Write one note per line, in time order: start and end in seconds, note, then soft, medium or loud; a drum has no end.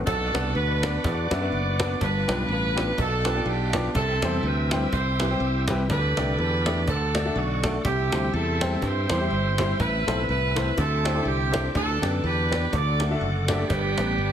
0.06 0.30 B1 loud
0.06 0.79 B2 medium
0.06 0.55 D4 medium
0.06 0.56 F#4 medium
0.06 0.52 A4 loud
0.06 2.95 B4 medium
0.06 1.99 D5 medium
0.06 1.99 F#5 medium
0.06 3.91 D6 medium
0.06 cajon bass loud
0.34 0.52 C2 medium
0.34 0.47 B3 medium
0.34 0.47 D4 medium
0.34 0.47 F#4 medium
0.34 0.47 B4 medium
0.34 0.47 D5 medium
0.34 cajon slap loud
0.55 0.96 D2 loud
0.55 1.49 D4 medium
0.55 1.04 F#4 medium
0.55 1.04 B4 loud
0.55 cajon slap soft
0.83 0.95 B3 medium
0.83 0.96 D4 medium
0.83 0.96 F#4 medium
0.83 0.96 B4 medium
0.83 0.96 D5 medium
0.83 cajon slap loud
1.04 1.28 E2 loud
1.04 1.98 F#4 medium
1.04 1.98 B4 medium
1.04 2.01 D5 loud
1.04 cajon bass loud
1.31 1.49 F#2 loud
1.31 1.37 B3 medium
1.31 1.37 D4 medium
1.31 1.38 F#4 medium
1.31 1.38 B4 medium
1.31 1.38 E5 medium
1.31 cajon slap loud
1.41 1.54 B3 medium
1.41 1.55 D4 medium
1.41 1.55 F#4 medium
1.41 1.55 B4 medium
1.41 1.55 E5 medium
1.52 1.94 F#1 medium
1.52 cajon slap soft
1.79 1.92 B3 loud
1.79 1.92 D4 medium
1.79 1.92 F#4 medium
1.79 1.92 B4 loud
1.79 1.92 D5 loud
1.79 cajon bass loud
1.79 cajon slap loud
2.00 2.25 G1 loud
2.00 2.73 G2 medium
2.00 2.50 D4 medium
2.00 2.50 F4 medium
2.00 2.50 B4 loud
2.00 3.93 F5 medium
2.00 6.83 G5 medium
2.00 cajon bass loud
2.28 2.46 B1 loud
2.28 2.41 B3 medium
2.28 2.41 D4 medium
2.28 2.40 F4 medium
2.28 2.41 G4 medium
2.28 2.41 B4 medium
2.28 cajon slap loud
2.48 2.90 A1 medium
2.48 2.96 D4 medium
2.48 2.96 F4 medium
2.48 2.96 B4 loud
2.48 cajon slap soft
2.76 2.89 B3 medium
2.76 2.89 D4 medium
2.76 2.89 F4 medium
2.76 2.89 G4 medium
2.76 2.89 B4 medium
2.76 cajon slap loud
2.97 3.39 B1 loud
2.97 3.70 B2 medium
2.97 3.46 D4 medium
2.97 3.92 F4 medium
2.97 3.47 A4 loud
2.97 3.94 B4 medium
2.97 cajon bass loud
3.25 3.32 B3 medium
3.25 3.32 D4 medium
3.25 3.32 F4 medium
3.25 3.32 G4 medium
3.25 3.32 B4 medium
3.25 cajon slap loud
3.36 3.49 B3 medium
3.36 3.49 D4 medium
3.36 3.49 F4 medium
3.36 3.49 G4 medium
3.36 3.49 D5 medium
3.46 3.87 B1 loud
3.46 3.92 D4 medium
3.46 3.86 G4 loud
3.46 cajon slap soft
3.73 3.87 B3 medium
3.73 3.87 D4 medium
3.73 3.87 F4 medium
3.73 3.87 G4 medium
3.73 3.87 D5 medium
3.73 cajon bass loud
3.73 cajon slap loud
3.94 4.18 C2 loud
3.94 4.67 C3 medium
3.94 5.88 C4 medium
3.94 4.89 C4 medium
3.94 4.44 E4 medium
3.94 4.41 A4 loud
3.94 5.87 E5 medium
3.94 5.87 E6 medium
3.94 cajon bass loud
4.22 4.40 E2 loud
4.22 4.35 G3 medium
4.22 4.36 C4 medium
4.22 4.36 E4 medium
4.22 4.36 G4 medium
4.22 4.36 C5 medium
4.22 cajon slap loud
4.43 4.85 D2 loud
4.43 4.92 E4 medium
4.43 4.92 G4 medium
4.43 4.93 B4 loud
4.43 cajon slap soft
4.71 4.84 G3 medium
4.71 4.84 C4 medium
4.71 4.84 E4 medium
4.71 4.84 G4 medium
4.71 4.85 C5 medium
4.71 cajon slap loud
4.92 5.34 C2 loud
4.92 5.86 E4 medium
4.92 5.86 G4 medium
4.92 5.67 C5 loud
4.92 cajon bass loud
5.20 5.27 G3 medium
5.20 5.26 C4 medium
5.20 5.27 E4 medium
5.20 5.27 G4 medium
5.20 5.27 B4 medium
5.20 cajon slap loud
5.31 5.44 G3 medium
5.31 5.44 C4 medium
5.31 5.44 E4 medium
5.31 5.44 G4 medium
5.31 5.44 C5 medium
5.40 5.89 C2 loud
5.68 5.82 G3 loud
5.68 5.82 C4 medium
5.68 5.82 E4 medium
5.68 5.82 G4 medium
5.68 5.82 B4 loud
5.68 cajon bass loud
5.68 cajon slap loud
5.89 6.13 D2 loud
5.89 6.63 D3 medium
5.89 6.39 D4 medium
5.89 6.38 G4 medium
5.89 6.86 A4 medium
5.89 6.35 B4 loud
5.89 7.83 D5 medium
5.89 7.83 D6 medium
5.89 cajon bass loud
6.17 6.35 C2 medium
6.17 6.30 A3 medium
6.17 6.30 D4 medium
6.17 6.30 G4 medium
6.17 6.30 A4 medium
6.17 6.30 D5 medium
6.17 cajon slap loud
6.38 6.87 E2 medium
6.38 6.84 D4 medium
6.38 6.84 G4 medium
6.38 6.84 B4 medium
6.38 cajon slap soft
6.66 6.79 A3 medium
6.66 6.79 D4 medium
6.66 6.79 G4 medium
6.66 6.79 A4 medium
6.66 6.79 D5 medium
6.66 cajon slap loud
6.87 7.29 D2 loud
6.87 7.60 D3 medium
6.87 7.37 D4 medium
6.87 7.36 F#4 medium
6.87 7.84 A4 medium
6.87 7.37 A4 medium
6.87 7.84 F#5 medium
6.87 cajon bass loud
7.15 7.21 A3 medium
7.15 7.21 D4 medium
7.15 7.21 F#4 medium
7.15 7.21 A4 medium
7.15 7.21 D5 medium
7.15 cajon slap loud
7.25 7.38 A3 medium
7.25 7.38 D4 medium
7.25 7.38 F#4 medium
7.25 7.38 A4 medium
7.25 7.39 E5 medium
7.36 7.77 B1 medium
7.36 7.72 A3 medium
7.36 7.72 D4 medium
7.36 7.75 F#4 medium
7.36 cajon slap soft
7.63 7.76 A3 medium
7.63 7.76 D4 medium
7.63 7.76 F#4 medium
7.63 7.76 A4 medium
7.63 7.76 D5 medium
7.63 cajon bass loud
7.63 cajon slap loud
7.84 8.08 C2 loud
7.84 8.58 C3 medium
7.84 11.71 C4 medium
7.84 8.32 C4 medium
7.84 8.32 E4 medium
7.84 8.30 G4 loud
7.84 10.74 E5 medium
7.84 9.78 G5 medium
7.84 10.74 E6 medium
7.84 cajon bass loud
8.12 8.30 D2 medium
8.12 8.25 G3 medium
8.12 8.25 C4 medium
8.12 8.25 E4 medium
8.12 8.25 G4 medium
8.12 8.26 C5 medium
8.12 cajon slap loud
8.33 8.75 E2 medium
8.33 9.27 C4 medium
8.33 8.81 E4 medium
8.33 8.82 A4 loud
8.33 cajon slap soft
8.61 8.73 G3 medium
8.61 8.74 C4 medium
8.61 8.74 E4 medium
8.61 8.74 G4 medium
8.61 8.74 C5 medium
8.61 cajon slap loud
8.82 9.06 G2 loud
8.82 9.76 E4 medium
8.82 9.76 G4 medium
8.82 9.80 C5 loud
8.82 cajon bass loud
9.10 9.28 E2 loud
9.10 9.17 G3 medium
9.10 9.17 C4 medium
9.10 9.17 E4 medium
9.10 9.17 G4 medium
9.10 9.17 C5 medium
9.10 cajon slap loud
9.21 9.34 G3 medium
9.21 9.34 C4 medium
9.21 9.34 E4 medium
9.21 9.34 G4 medium
9.21 9.34 C5 medium
9.30 9.72 G1 loud
9.30 cajon slap soft
9.58 9.71 G3 medium
9.58 9.71 C4 medium
9.58 9.72 E4 medium
9.58 9.72 G4 medium
9.58 9.72 C5 loud
9.58 cajon bass loud
9.58 cajon slap loud
9.80 10.03 A1 loud
9.80 10.53 A2 medium
9.80 10.28 E4 medium
9.80 10.28 B4 loud
9.80 10.76 A5 medium
9.80 cajon bass loud
10.07 10.25 B1 medium
10.07 10.19 A3 medium
10.07 10.20 C4 medium
10.07 10.20 E4 medium
10.07 10.20 A4 medium
10.07 10.20 C5 medium
10.07 cajon slap loud
10.29 10.70 C2 loud
10.29 10.74 E4 medium
10.29 10.74 B4 loud
10.29 cajon slap soft
10.55 10.68 A3 medium
10.55 10.68 C4 medium
10.55 10.68 E4 medium
10.55 10.68 A4 medium
10.55 10.68 C5 medium
10.55 cajon slap loud
10.77 11.19 D2 loud
10.77 11.50 D3 medium
10.77 11.26 C4 medium
10.77 11.26 E4 medium
10.77 11.27 A4 loud
10.77 11.74 E5 medium
10.77 12.71 G5 medium
10.77 14.32 D6 medium
10.77 cajon bass loud
11.04 11.11 D4 medium
11.04 11.11 E4 medium
11.04 11.11 G4 medium
11.04 11.11 A4 medium
11.04 11.11 C5 medium
11.04 cajon slap loud
11.14 11.28 D4 medium
11.14 11.28 E4 medium
11.14 11.28 G4 medium
11.14 11.28 A4 medium
11.14 11.28 C5 medium
11.25 11.67 C2 medium
11.25 11.72 C4 medium
11.25 11.72 E4 medium
11.25 11.65 G4 loud
11.25 cajon slap soft
11.52 11.65 D4 medium
11.52 11.65 E4 medium
11.52 11.66 G4 medium
11.52 11.65 A4 medium
11.52 11.66 C5 medium
11.52 cajon bass loud
11.52 cajon slap loud
11.74 11.99 D2 loud
11.74 12.47 D3 medium
11.74 12.23 D4 medium
11.74 12.21 A4 loud
11.74 12.72 B4 medium
11.74 14.32 D5 medium
11.74 cajon bass loud
12.02 12.20 F#2 medium
12.02 12.15 B3 medium
12.02 12.15 D4 medium
12.02 12.15 G4 medium
12.02 12.15 B4 medium
12.02 12.15 D5 medium
12.02 cajon slap loud
12.24 12.65 E2 loud
12.24 12.69 D4 medium
12.24 12.70 G4 medium
12.24 12.73 B4 loud
12.24 cajon slap soft
12.51 12.64 B3 medium
12.51 12.63 D4 medium
12.51 12.64 G4 medium
12.51 12.64 B4 medium
12.51 12.64 D5 medium
12.51 cajon slap loud
12.72 13.14 D2 loud
12.72 13.45 D3 medium
12.72 13.67 F#4 medium
12.72 13.69 A4 medium
12.72 13.66 A4 medium
12.72 13.01 D5 loud
12.72 13.69 F#5 medium
12.72 cajon bass loud
13.00 13.07 A3 medium
13.00 13.07 D4 medium
13.00 13.07 F#4 medium
13.00 13.07 A4 medium
13.00 13.07 D5 medium
13.00 cajon slap loud
13.11 13.24 A3 medium
13.11 13.24 D4 medium
13.11 13.24 F#4 medium
13.11 13.24 A4 medium
13.11 13.24 E5 medium
13.21 13.63 F#1 medium
13.21 cajon slap soft
13.48 13.61 A3 medium
13.48 14.32 B3 medium
13.48 13.61 D4 medium
13.48 14.32 D4 medium
13.48 13.62 F#4 medium
13.48 14.32 G4 loud
13.48 13.62 A4 medium
13.48 13.62 D5 medium
13.48 cajon bass medium
13.48 cajon slap loud
13.69 13.94 G1 loud
13.69 14.32 G2 medium
13.69 14.32 B4 medium
13.69 14.32 G5 medium
13.69 cajon bass loud
13.98 14.16 A1 medium
13.98 14.10 B3 medium
13.98 14.11 D4 medium
13.98 14.11 G4 medium
13.98 14.11 B4 medium
13.98 14.11 D5 medium
13.98 cajon slap loud
14.18 14.32 G1 medium
14.18 cajon slap soft